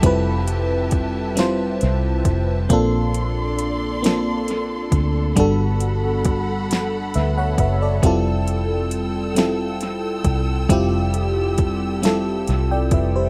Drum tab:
HH |xxxxxx|xxxxxx|xxxxxx|xxxxxx|
SD |---o--|---o--|---o--|---o--|
BD |o-o--o|o----o|o-o--o|o----o|

HH |xxxxxx|
SD |---o--|
BD |o-o--o|